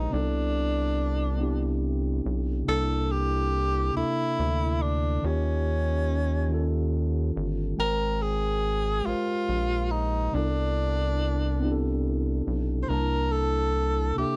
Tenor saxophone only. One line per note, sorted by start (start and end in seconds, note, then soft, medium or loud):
0.00 0.14 D#4 medium
0.13 1.82 D4 medium
2.68 3.13 A4 loud
3.11 3.95 G4 loud
3.96 4.83 E4 medium
4.82 5.27 D4 medium
5.25 6.94 C#4 medium
7.80 8.23 A#4 medium
8.21 9.07 G#4 medium
9.06 9.92 F4 medium
9.90 10.35 D#4 medium
10.34 12.04 D4 medium
12.82 12.90 C5 medium
12.89 13.33 A#4 medium
13.32 14.16 A4 medium
14.18 14.36 G4 medium